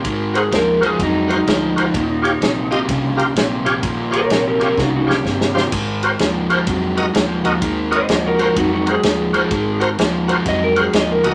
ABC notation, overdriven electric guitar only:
X:1
M:4/4
L:1/8
Q:"Swing" 1/4=127
K:Ab
V:1 name="Overdriven electric guitar" clef=bass
[A,,E,]2 [A,,F,] [A,,F,] [A,,_G,]2 [A,,F,] [A,,F,] | [E,,B,,]2 [E,,C,] [E,,C,] [E,,D,]2 [E,,C,] [E,,C,] | [E,,B,,]2 [E,,C,] [E,,C,] [E,,D,]2 [E,,C,] [E,,C,] | [A,,E,]2 [A,,F,] [A,,F,] [A,,_G,]2 [A,,F,] [A,,F,] |
[A,,E,]2 [A,,F,] [A,,F,] [A,,_G,]2 [A,,F,] [A,,F,] | [A,,E,]2 [A,,F,] [A,,F,] [A,,_G,]2 [A,,F,] [A,,F,] |]